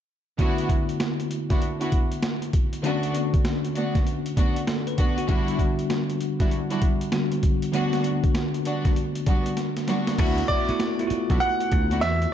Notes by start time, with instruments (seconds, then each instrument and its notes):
0.38 tine electric piano D3 A3 B3 E4 F#4, string section B3 D4 E4 F#4, kick, closed hi-hat
0.58 closed hi-hat
0.69 kick, closed hi-hat
0.89 closed hi-hat
1.00 snare, closed hi-hat
1.20 closed hi-hat
1.31 closed hi-hat
1.50 string section B3 D4 E4 F#4, kick, snare, closed hi-hat
1.62 closed hi-hat
1.80 string section B3 D4 E4 F#4, closed hi-hat
1.92 kick, closed hi-hat
2.12 closed hi-hat
2.22 snare, closed hi-hat
2.42 closed hi-hat
2.53 kick, closed hi-hat
2.73 closed hi-hat
2.83 tine electric piano D3 A3 C#4 D4 F#4, string section A3 B3 D4 F#4, closed hi-hat
3.03 closed hi-hat
3.14 closed hi-hat
3.34 kick, closed hi-hat
3.45 snare, closed hi-hat
3.65 closed hi-hat
3.75 string section A3 B3 D4 F#4, closed hi-hat
3.95 kick, snare, closed hi-hat
4.07 closed hi-hat
4.26 closed hi-hat
4.37 string section A3 B3 D4 F#4, kick, closed hi-hat
4.56 closed hi-hat
4.67 tine electric piano A4, snare, closed hi-hat
4.87 tine electric piano B4, closed hi-hat
4.98 string section A3 B3 D4 F#4, kick, closed hi-hat
5.18 tine electric piano F#4, closed hi-hat
5.28 tine electric piano D3 G3 B3 D4 F#4, string section G3 D4 E4 F#4, kick, closed hi-hat
5.48 closed hi-hat
5.59 kick, closed hi-hat
5.79 closed hi-hat
5.90 snare, closed hi-hat
6.10 closed hi-hat
6.20 closed hi-hat
6.40 string section G3 D4 E4 F#4, kick, snare, closed hi-hat
6.51 closed hi-hat
6.70 string section G3 D4 E4 F#4, closed hi-hat
6.82 kick, closed hi-hat
7.01 closed hi-hat
7.12 tine electric piano D3 G3 B3 D4 F#4, snare, closed hi-hat
7.32 closed hi-hat
7.43 kick, closed hi-hat
7.62 closed hi-hat
7.73 tine electric piano D3 A3 B3 D4 F#4, string section G3 B3 D4 F#4, closed hi-hat
7.93 snare, closed hi-hat
8.04 closed hi-hat
8.24 kick, closed hi-hat
8.35 snare, closed hi-hat
8.54 closed hi-hat
8.65 string section G3 B3 D4 F#4, closed hi-hat
8.85 kick, snare, closed hi-hat
8.96 closed hi-hat
9.15 closed hi-hat
9.26 string section G3 B3 D4 F#4, kick, closed hi-hat
9.46 closed hi-hat
9.57 snare, closed hi-hat
9.77 snare, closed hi-hat
9.88 string section G3 B3 D4 F#4, snare, closed hi-hat
10.07 snare, closed hi-hat
10.18 slap bass D2, tine electric piano A3 B3 E4 F#4, string section B3 D4 E4 F#4, kick, closed hi-hat, crash
10.38 closed hi-hat
10.48 string section B3 D4 E4 F#4, grand piano D5, kick, closed hi-hat
10.69 tine electric piano A3 B3 E4 F#4, muted slap bass stroke, closed hi-hat
10.80 snare, closed hi-hat
10.99 tine electric piano A3 B3 E4 F4, closed hi-hat
11.07 tine electric piano F#4, muted slap bass stroke, closed hi-hat
11.29 slap bass B1, string section B3 D4 E4 F#4, kick, snare, closed hi-hat
11.40 grand piano F#5, closed hi-hat
11.60 closed hi-hat
11.72 slap bass D2, kick, closed hi-hat
11.91 string section B3 D4 E4 F#4, closed hi-hat
12.01 slap bass E2, grand piano E5, snare, closed hi-hat
12.22 closed hi-hat